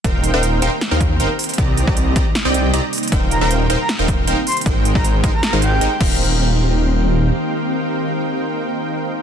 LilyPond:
<<
  \new Staff \with { instrumentName = "Soft synth lead" } { \time 4/4 \key ees \major \tempo 4 = 156 r1 | r1 | r8 bes''16 bes''16 r8. bes''16 r4. c'''16 r16 | r8. bes''16 r8. bes''16 bes''16 r16 g''4 r8 |
r1 | r1 | }
  \new Staff \with { instrumentName = "Supersaw synth" } { \time 4/4 \key ees \major <ees' bes' c'' f'' g''>8. <ees' bes' c'' f'' g''>8. <ees' bes' c'' f'' g''>16 r8 <ees' bes' c'' f'' g''>8. <ees' bes' c'' f'' g''>16 r8. | <c' g' d'' ees'' bes''>8. <c' g' d'' ees'' bes''>8. <c' g' d'' ees'' bes''>16 r8 <c' g' d'' ees'' g''>8. <c' g' d'' ees'' bes''>16 r8. | <ees' bes' c'' f'' g''>8. <ees' bes' c'' f'' g''>8. <ees' bes' c'' f'' g''>16 r8 <ees' bes' c'' f'' g''>8. <ees' bes' c'' f'' g''>16 r8. | <aes ees' bes' c'' g''>8. <aes ees' bes' c'' g''>8. <aes ees' bes' c'' g''>16 r8 <aes ees' bes' c'' f''>8. <aes ees' bes' c'' g''>16 r16 <ees' bes' c'' f'' g''>8~ |
<ees' bes' c'' f'' g''>1~ | <ees' bes' c'' f'' g''>1 | }
  \new Staff \with { instrumentName = "Ambient pad" } { \time 4/4 \key ees \major << { <c' g'>2.~ <c' g'>8 <bes ees'>8~ | <bes ees'>1 | <c' g'>1~ | <c' g'>2.~ <c' g'>8 <ees bes c' g'>8~ |
<ees bes c' g'>1~ | <ees bes c' g'>1 | } \\ { <ees bes>2.~ <ees bes>8 <c g>8~ | <c g>1 | ees1 | aes2.~ aes8 r8 |
r1 | r1 | } >> }
  \new Staff \with { instrumentName = "Detuned saw bass" } { \clef bass \time 4/4 \key ees \major ees,,8. ees,,8. ees,,16 r8 ees,8. ees,,16 r8. | c,8. c,8. c,16 r8 c,8. c,16 r8. | ees,,8. ees,,8. ees,,16 r8 ees,,8. ees,,16 r8. | aes,,8. aes,,8. aes,,16 r8 aes,,8. aes,,16 r16 ees,,8~ |
ees,,2. r4 | r1 | }
  \new DrumStaff \with { instrumentName = "Drums" } \drummode { \time 4/4 <hh bd>8 hh8 hh8 hh8 <hh sn>8 <hh bd>8 hh8 hho32 hh32 hh32 hh32 | <hh bd>8 hh16 bd16 hh8 <hh bd>8 <hh sn>8 hh8 hh8 hho32 hh32 hh32 hh32 | <hh bd>8 hh8 hh8 hh8 <hh sn>8 <hh bd>8 hh8 hho32 hh32 hh32 hh32 | <hh bd>8 hh16 bd16 hh8 <hh bd>8 <hh sn>8 hh8 hh8 <cymc bd>8 |
r4 r4 r4 r4 | r4 r4 r4 r4 | }
>>